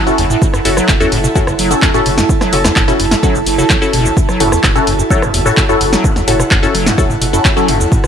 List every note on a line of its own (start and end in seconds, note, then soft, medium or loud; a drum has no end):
0.00 4.18 E4 medium
0.00 8.07 E4 medium
0.00 8.07 A4 medium
0.00 1.63 F#5 medium
0.07 0.10 F#2 medium
0.07 0.62 C#4 loud
0.07 0.62 E4 loud
0.07 0.62 F#4 medium
0.07 0.62 A4 loud
0.07 shaker soft
0.18 0.33 F#1 medium
0.18 0.25 E2 loud
0.18 open hi-hat medium
0.30 0.36 A2 loud
0.30 shaker medium
0.42 0.46 B2 loud
0.42 kick loud
0.42 shaker medium
0.54 0.60 F#2 medium
0.54 cross-stick medium
0.54 shaker soft
0.65 0.80 F#1 loud
0.65 0.69 F#2 medium
0.65 0.76 C#4 medium
0.65 0.76 E4 medium
0.65 0.76 F#4 medium
0.65 0.76 A4 loud
0.65 open hi-hat loud
0.77 0.90 F#3 medium
0.77 cross-stick medium
0.77 shaker medium
0.88 1.04 F#1 loud
0.88 0.93 F#2 medium
0.88 kick loud
0.88 clap loud
0.88 shaker medium
1.00 1.07 E2 loud
1.00 1.11 C#4 loud
1.00 1.11 E4 medium
1.00 1.11 F#4 loud
1.00 1.11 A4 loud
1.00 shaker soft
1.12 1.27 F#1 medium
1.12 1.19 A2 loud
1.12 open hi-hat medium
1.24 1.28 B2 loud
1.24 shaker medium
1.35 1.42 F#2 medium
1.35 1.47 C#4 medium
1.35 1.47 E4 medium
1.35 1.47 F#4 medium
1.35 1.47 A4 medium
1.35 kick loud
1.35 shaker medium
1.47 1.55 F#1 loud
1.47 1.51 F#2 medium
1.47 cross-stick medium
1.47 shaker soft
1.59 1.74 F#1 medium
1.59 1.72 F#3 medium
1.59 5.38 A5 medium
1.59 open hi-hat loud
1.71 1.75 F#2 medium
1.71 1.88 C#4 loud
1.71 1.88 E4 medium
1.71 1.88 F#4 medium
1.71 1.88 A4 loud
1.71 shaker medium
1.82 1.89 E2 loud
1.82 kick loud
1.82 clap loud
1.82 shaker medium
1.94 2.01 A2 loud
1.94 2.50 C#4 loud
1.94 2.50 E4 medium
1.94 2.50 F#4 medium
1.94 2.50 A4 loud
1.94 shaker soft
2.06 2.21 F#1 medium
2.06 2.10 B2 loud
2.06 open hi-hat medium
2.18 2.24 F#2 medium
2.18 snare medium
2.18 shaker medium
2.29 2.33 F#2 medium
2.29 kick loud
2.29 shaker medium
2.41 2.54 F#3 medium
2.41 cross-stick medium
2.41 snare soft
2.41 shaker soft
2.53 2.68 F#1 loud
2.53 2.57 F#2 medium
2.53 2.64 C#4 loud
2.53 2.64 E4 medium
2.53 2.64 F#4 medium
2.53 2.64 A4 loud
2.53 open hi-hat loud
2.65 2.71 E2 loud
2.65 cross-stick medium
2.65 snare medium
2.65 shaker medium
2.76 2.91 F#1 medium
2.76 2.83 A2 loud
2.76 kick loud
2.76 clap loud
2.76 shaker medium
2.88 2.92 B2 loud
2.88 2.99 C#4 loud
2.88 2.99 E4 medium
2.88 2.99 F#4 loud
2.88 2.99 A4 loud
2.88 shaker soft
3.00 3.15 F#1 medium
3.00 3.06 F#2 medium
3.00 open hi-hat medium
3.11 3.15 F#2 medium
3.11 snare medium
3.11 shaker medium
3.23 3.36 F#3 medium
3.23 3.34 C#4 medium
3.23 3.34 E4 medium
3.23 3.34 F#4 medium
3.23 3.34 A4 loud
3.23 kick loud
3.23 shaker medium
3.35 3.42 F#1 loud
3.35 3.39 F#2 medium
3.35 shaker soft
3.46 3.62 F#1 medium
3.46 3.56 F#1 medium
3.46 open hi-hat loud
3.58 3.65 C#3 medium
3.58 3.79 C#4 medium
3.58 3.79 E4 medium
3.58 3.79 F#4 medium
3.58 3.79 A4 medium
3.58 shaker medium
3.70 3.76 F#3 medium
3.70 kick loud
3.70 clap loud
3.70 shaker medium
3.82 4.37 C#4 medium
3.82 4.37 E4 medium
3.82 4.37 F#4 medium
3.82 4.37 A4 loud
3.82 shaker soft
3.93 4.08 F#1 medium
3.93 4.07 B2 loud
3.93 open hi-hat medium
4.05 4.12 F#1 loud
4.05 shaker medium
4.17 4.21 F#2 medium
4.17 8.07 F#4 medium
4.17 kick loud
4.17 shaker medium
4.29 4.42 F#3 medium
4.29 cross-stick medium
4.29 shaker soft
4.40 4.55 F#1 loud
4.40 4.50 F#2 medium
4.40 4.51 C#4 medium
4.40 4.51 E4 medium
4.40 4.51 F#4 medium
4.40 4.51 A4 loud
4.40 open hi-hat loud
4.52 4.58 E2 loud
4.52 cross-stick medium
4.52 shaker medium
4.63 4.79 F#1 medium
4.63 4.70 A2 loud
4.63 kick loud
4.63 clap loud
4.63 shaker medium
4.75 4.79 B2 loud
4.75 4.86 C#4 loud
4.75 4.86 E4 loud
4.75 4.86 F#4 medium
4.75 4.86 A4 loud
4.75 shaker soft
4.87 5.02 F#1 medium
4.87 4.94 F#2 medium
4.87 open hi-hat medium
4.99 5.03 F#2 medium
4.99 shaker medium
5.10 5.24 F#3 medium
5.10 5.22 C#4 medium
5.10 5.22 E4 medium
5.10 5.22 F#4 medium
5.10 5.22 A4 loud
5.10 kick loud
5.10 shaker medium
5.22 5.30 F#1 loud
5.22 5.32 F#2 medium
5.22 cross-stick medium
5.22 shaker soft
5.34 5.49 F#1 medium
5.34 5.40 E2 loud
5.34 8.07 F#5 medium
5.34 open hi-hat loud
5.46 5.52 A2 loud
5.46 5.63 C#4 loud
5.46 5.63 E4 medium
5.46 5.63 F#4 medium
5.46 5.63 A4 loud
5.46 shaker medium
5.57 5.61 B2 loud
5.57 kick loud
5.57 clap loud
5.57 shaker medium
5.69 5.76 F#2 medium
5.69 6.25 C#4 loud
5.69 6.25 E4 medium
5.69 6.25 F#4 loud
5.69 6.25 A4 loud
5.69 shaker soft
5.81 5.96 F#1 medium
5.81 5.85 F#2 medium
5.81 open hi-hat medium
5.93 6.06 F#3 medium
5.93 snare medium
5.93 shaker medium
6.04 6.14 F#2 medium
6.04 kick loud
6.04 shaker medium
6.16 6.22 E2 loud
6.16 snare soft
6.16 shaker soft
6.28 6.43 F#1 medium
6.28 6.34 A2 loud
6.28 6.39 C#4 medium
6.28 6.39 E4 medium
6.28 6.39 F#4 medium
6.28 6.39 A4 loud
6.28 open hi-hat loud
6.39 6.43 B2 loud
6.39 cross-stick medium
6.39 shaker medium
6.51 6.66 F#1 loud
6.51 6.58 F#2 medium
6.51 kick loud
6.51 clap loud
6.51 shaker medium
6.63 6.67 F#2 medium
6.63 6.74 C#4 loud
6.63 6.74 E4 loud
6.63 6.74 F#4 medium
6.63 6.74 A4 loud
6.63 shaker soft
6.75 6.90 F#1 medium
6.75 6.88 F#3 medium
6.75 open hi-hat medium
6.86 6.96 F#2 medium
6.86 snare medium
6.86 shaker medium
6.98 7.04 E2 loud
6.98 7.09 C#4 medium
6.98 7.09 E4 medium
6.98 7.09 F#4 medium
6.98 7.09 A4 loud
6.98 kick loud
6.98 shaker medium
7.10 7.17 F#1 loud
7.10 7.16 A2 loud
7.10 shaker soft
7.21 7.37 F#1 medium
7.21 7.25 B2 loud
7.21 open hi-hat loud
7.33 7.40 F#2 medium
7.33 7.51 C#4 loud
7.33 7.51 E4 medium
7.33 7.51 F#4 medium
7.33 7.51 A4 loud
7.33 shaker medium
7.45 7.49 F#2 medium
7.45 kick loud
7.45 clap loud
7.45 shaker medium
7.57 7.70 F#3 medium
7.57 8.07 C#4 loud
7.57 8.07 E4 medium
7.57 8.07 F#4 loud
7.57 8.07 A4 loud
7.57 shaker soft
7.68 7.83 F#1 medium
7.68 7.78 F#2 medium
7.68 open hi-hat medium
7.80 7.86 E2 loud
7.80 shaker medium
7.92 7.98 A2 loud
7.92 kick loud
7.92 shaker medium
8.04 8.07 B2 loud
8.04 cross-stick medium